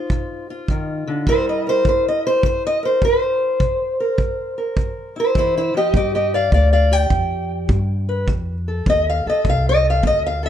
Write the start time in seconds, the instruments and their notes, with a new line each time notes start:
Already playing: steel-string acoustic guitar D#4 F4 C5
0.10 steel-string acoustic guitar C3, kick
0.50 steel-string acoustic guitar F4
0.68 steel-string acoustic guitar D#3, kick
1.07 steel-string acoustic guitar D3
1.27 steel-string acoustic guitar C3 G3 E4 A#4 C5, kick
1.49 steel-string acoustic guitar D#5
1.67 steel-string acoustic guitar A#4 C5
1.85 steel-string acoustic guitar G3 C5, kick
2.08 steel-string acoustic guitar D#5
2.27 steel-string acoustic guitar C5
2.43 steel-string acoustic guitar G3 C5, kick
2.67 steel-string acoustic guitar D#5
2.83 steel-string acoustic guitar A#4 C5
3.02 steel-string acoustic guitar G3 C5, kick
3.60 steel-string acoustic guitar C3, kick
4.00 steel-string acoustic guitar A#4
4.18 steel-string acoustic guitar G3, kick
4.58 steel-string acoustic guitar A#4
4.76 steel-string acoustic guitar G3, kick
5.16 steel-string acoustic guitar E4 C5
5.35 steel-string acoustic guitar E3 E4 C5, kick
5.57 steel-string acoustic guitar E4 C5
5.74 steel-string acoustic guitar F3 G4 D#5
5.94 upright bass G2, steel-string acoustic guitar G3 G4 D#5, kick
6.15 steel-string acoustic guitar G4 D#5
6.34 steel-string acoustic guitar D5 F5
6.52 upright bass D2, steel-string acoustic guitar G4 D5 F5, kick
6.73 steel-string acoustic guitar D5 F5
6.92 steel-string acoustic guitar G4 G5
7.10 upright bass F2, steel-string acoustic guitar D3, kick
7.69 upright bass G2, steel-string acoustic guitar G4, kick
8.09 steel-string acoustic guitar B4
8.27 upright bass F2, steel-string acoustic guitar F3, kick
8.68 steel-string acoustic guitar A4
8.86 upright bass D#2, steel-string acoustic guitar C4 D#5, kick
9.10 steel-string acoustic guitar F5
9.26 steel-string acoustic guitar A4 D#5, muted upright bass stroke
9.45 upright bass C2, steel-string acoustic guitar F3, kick
9.50 steel-string acoustic guitar F5
9.69 steel-string acoustic guitar D#5
9.84 steel-string acoustic guitar A4
9.90 steel-string acoustic guitar F5
10.03 upright bass D2, steel-string acoustic guitar C4, kick
10.07 steel-string acoustic guitar D#5
10.26 steel-string acoustic guitar F5
10.43 steel-string acoustic guitar A4 E5